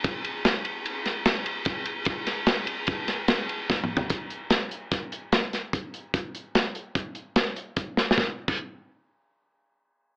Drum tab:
CC |------------------------------------------------------------|------------------------------------------------------------|------------------------------------------------------------|------------------------------------------------------------|
RD |x-----x-----x-----x-----x-----x-----x-----x-----x-----x-----|x-----x-----x-----x-----x-----x-----x-----x-----------------|------------------------------------------------------------|------------------------------------------------------------|
HH |------------------------------------------------------------|------------------------------------------------------------|x-----x-----x-----x-----x-----x-----x-----x-----x-----x-----|x-----x-----x-----x-----x-----x-----x-----x-----x-----------|
SD |------------o-----------------o-----o-----------------------|------o-----o-----------------o-----o-----------o-----------|------------o-----------o-----------o-----o-----------------|------------o-----------------------o-----------------o---o-|
T2 |------------------------------------------------------------|----------------------------------------------------o-------|------------------------------------------------------------|------------------------------------------------------------|
FT |------------------------------------------------------------|--------------------------------------------------------o---|------------------------------------------------------------|------------------------------------------------------------|
BD |o-----------------------------------------------o-----------|o-----------------------o-----------------------o-----------|o-----------------------o-----------------------o-----------|o-----------------------o-----------------------o-----------|

CC |---------x--------------------------------------------------|
RD |------------------------------------------------------------|
HH |------------------------------------------------------------|
SD |o-----------------------------------------------------------|
T2 |------------------------------------------------------------|
FT |------------------------------------------------------------|
BD |o--------o--------------------------------------------------|